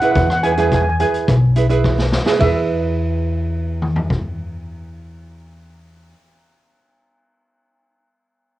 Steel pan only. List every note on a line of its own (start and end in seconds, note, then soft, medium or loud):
0.04 0.10 F#5 medium
0.11 0.18 F#5 medium
0.19 0.26 F#5 medium
0.27 0.32 F#5 soft
0.33 0.40 F#5 medium
0.43 0.51 G#5 medium
0.52 0.59 G#5 medium
0.60 0.66 G#5 medium
0.67 0.73 G#5 medium
0.74 0.81 G#5 medium
0.82 0.88 G#5 medium
0.89 0.97 G#5 medium
1.00 1.81 G#5 medium
2.41 6.12 E5 medium